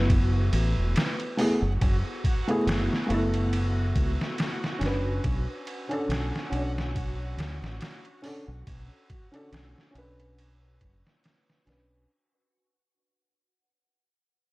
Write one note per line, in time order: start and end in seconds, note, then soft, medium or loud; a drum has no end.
0.00 0.49 F#1 medium
0.00 1.32 A3 medium
0.00 1.34 B3 medium
0.00 1.35 E4 medium
0.00 12.11 F#4 medium
0.00 1.36 B4 medium
0.10 kick loud
0.10 ride medium
0.53 0.73 A1 medium
0.53 ride medium
0.77 0.93 E1 medium
0.96 snare loud
0.96 ride medium
1.20 ride soft
1.37 1.58 A3 medium
1.37 1.58 B3 medium
1.37 1.59 E4 medium
1.37 1.59 G#4 medium
1.37 open hi-hat medium
1.62 1.79 F#1 medium
1.81 2.02 F#1 medium
1.81 kick loud
1.81 ride medium
2.24 kick medium
2.24 ride medium
2.48 3.05 A3 medium
2.48 3.05 B3 medium
2.48 3.06 E4 medium
2.48 3.06 G#4 loud
2.48 ride soft
2.67 2.88 F#1 medium
2.67 snare loud
2.67 ride medium
2.93 snare soft
3.07 3.92 F#1 medium
3.07 4.75 A3 medium
3.07 4.76 B3 medium
3.07 ride medium
3.11 4.77 E4 medium
3.11 4.78 A4 loud
3.34 ride soft
3.53 ride medium
3.95 4.16 C#2 medium
3.95 kick medium
3.95 ride medium
4.21 snare soft
4.38 snare loud
4.38 ride medium
4.64 snare soft
4.79 5.19 F#1 medium
4.79 5.84 C#4 medium
4.79 5.85 D4 medium
4.79 ride medium
4.83 5.87 B4 medium
4.83 snare medium
5.24 5.45 B1 medium
5.24 kick loud
5.24 ride medium
5.67 ride medium
5.89 6.47 C#4 medium
5.89 6.48 D4 medium
5.89 6.49 A4 medium
5.89 ride soft
6.09 6.30 B1 medium
6.09 snare loud
6.09 ride medium
6.36 snare soft
6.50 7.34 B1 medium
6.50 8.18 C#4 medium
6.50 8.20 D4 medium
6.50 ride medium
6.57 8.21 C#5 medium
6.78 snare medium
6.96 kick loud
6.96 ride medium
7.37 7.59 D2 medium
7.37 snare loud
7.37 ride medium
7.62 7.79 A1 medium
7.62 snare soft
7.81 snare loud
7.81 ride medium
8.05 ride soft
8.22 8.43 C#4 medium
8.22 8.44 D4 medium
8.22 8.45 A4 medium
8.22 open hi-hat medium
8.48 8.64 B1 medium
8.67 8.88 B1 medium
8.67 kick loud
8.67 ride medium
9.10 kick medium
9.10 ride medium
9.32 9.89 C#4 medium
9.32 9.91 D4 medium
9.32 9.91 A4 medium
9.32 ride soft
9.52 9.73 B1 medium
9.52 snare loud
9.52 ride medium
9.78 snare soft
9.91 10.77 B1 medium
9.91 11.60 C#4 medium
9.91 11.62 D4 medium
9.95 11.63 B4 loud
9.95 ride medium
10.20 ride soft
10.38 ride medium
10.81 11.02 F#1 medium
10.81 kick medium
10.81 ride medium
11.07 snare soft
11.24 snare medium
11.24 ride medium
11.50 snare soft
11.66 12.05 B1 medium
11.66 12.07 C#4 medium
11.66 12.07 D4 medium
11.66 12.08 B4 medium
11.66 snare medium
11.66 ride medium